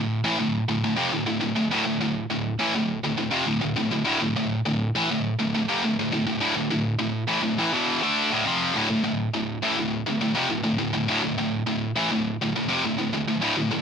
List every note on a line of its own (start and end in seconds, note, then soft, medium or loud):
0.00 0.19 D2 medium
0.00 0.20 A2 medium
0.24 0.38 A2 medium
0.24 0.39 E3 medium
0.39 0.63 D2 medium
0.39 0.63 A2 medium
0.69 0.83 D2 medium
0.69 0.83 A2 medium
0.84 0.96 D2 medium
0.84 0.97 A2 medium
0.96 1.11 F2 medium
0.96 1.12 C3 medium
1.12 1.25 D2 medium
1.12 1.25 A2 medium
1.26 1.39 D2 medium
1.26 1.40 A2 medium
1.41 1.55 D2 medium
1.41 1.56 A2 medium
1.56 1.70 D2 medium
1.56 1.72 A2 medium
1.71 1.84 D2 loud
1.71 1.85 A2 loud
1.86 2.00 D2 medium
1.86 2.00 A2 medium
2.01 2.25 D2 medium
2.01 2.25 A2 medium
2.30 2.54 D2 medium
2.30 2.54 A2 medium
2.59 2.73 A2 medium
2.59 2.74 E3 medium
2.75 2.98 D2 medium
2.75 2.99 A2 medium
3.04 3.16 D2 medium
3.04 3.17 A2 medium
3.18 3.31 D2 medium
3.18 3.32 A2 medium
3.31 3.46 F2 medium
3.31 3.46 C3 medium
3.46 3.60 D2 medium
3.46 3.60 A2 medium
3.61 3.75 D2 medium
3.61 3.75 A2 medium
3.76 3.90 D2 medium
3.76 3.91 A2 medium
3.91 4.04 D2 medium
3.91 4.05 A2 medium
4.05 4.19 D2 loud
4.05 4.20 A2 loud
4.21 4.35 D2 medium
4.21 4.35 A2 medium
4.36 4.60 D2 medium
4.36 4.60 A2 medium
4.66 4.89 D2 medium
4.66 4.89 A2 medium
4.95 5.09 A2 medium
4.95 5.09 E3 loud
5.11 5.33 D2 medium
5.11 5.34 A2 medium
5.39 5.54 D2 medium
5.39 5.54 A2 medium
5.55 5.68 D2 medium
5.55 5.69 A2 medium
5.69 5.82 F2 medium
5.69 5.83 C3 loud
5.84 5.98 D2 medium
5.84 5.98 A2 medium
5.99 6.11 D2 medium
5.99 6.12 A2 medium
6.12 6.25 D2 medium
6.12 6.25 A2 medium
6.26 6.39 D2 medium
6.26 6.40 A2 medium
6.41 6.54 D2 medium
6.41 6.55 A2 loud
6.55 6.69 D2 medium
6.55 6.70 A2 medium
6.71 6.94 D2 medium
6.71 6.94 A2 medium
6.99 7.23 D2 medium
6.99 7.23 A2 medium
7.28 7.42 A2 medium
7.28 7.43 E3 medium
7.42 7.58 D2 medium
7.42 7.57 A2 medium
7.59 7.72 A2 medium
7.59 7.73 E3 loud
7.73 8.01 E2 medium
7.73 8.01 B2 medium
7.73 8.02 E3 medium
8.02 8.30 D3 medium
8.02 8.31 A3 medium
8.02 8.31 D4 medium
8.30 8.45 D2 medium
8.30 8.45 A2 medium
8.45 8.74 F2 medium
8.45 8.75 C3 medium
8.45 8.75 F3 loud
8.74 8.88 D2 medium
8.74 8.88 A2 loud
8.89 9.03 D2 medium
8.89 9.03 A2 medium
9.04 9.28 D2 medium
9.04 9.28 A2 medium
9.34 9.57 D2 medium
9.34 9.57 A2 medium
9.63 9.77 A2 medium
9.63 9.77 E3 medium
9.78 10.01 D2 medium
9.78 10.02 A2 medium
10.06 10.20 D2 medium
10.06 10.20 A2 medium
10.21 10.34 D2 medium
10.21 10.36 A2 medium
10.35 10.49 F2 medium
10.35 10.49 C3 loud
10.50 10.62 D2 medium
10.50 10.63 A2 medium
10.63 10.77 D2 medium
10.63 10.77 A2 medium
10.78 10.92 D2 medium
10.78 10.93 A2 medium
10.93 11.07 D2 medium
10.93 11.08 A2 medium
11.08 11.22 D2 medium
11.08 11.22 A2 loud
11.23 11.37 D2 medium
11.23 11.37 A2 medium
11.38 11.62 D2 medium
11.38 11.62 A2 medium
11.67 11.91 D2 medium
11.67 11.91 A2 medium
11.96 12.10 A2 medium
11.96 12.11 E3 loud
12.11 12.35 D2 medium
12.11 12.35 A2 medium
12.42 12.54 D2 medium
12.42 12.55 A2 medium
12.56 12.68 D2 medium
12.56 12.69 A2 medium
12.69 12.84 F2 medium
12.69 12.84 C3 medium
12.85 12.97 D2 medium
12.85 12.97 A2 medium
12.98 13.12 D2 medium
12.98 13.13 A2 medium
13.13 13.27 D2 medium
13.13 13.27 A2 medium
13.28 13.40 D2 medium
13.28 13.42 A2 medium
13.42 13.56 D2 loud
13.42 13.56 A2 loud
13.57 13.70 D2 medium
13.57 13.71 A2 medium
13.71 13.82 D2 medium
13.71 13.82 A2 medium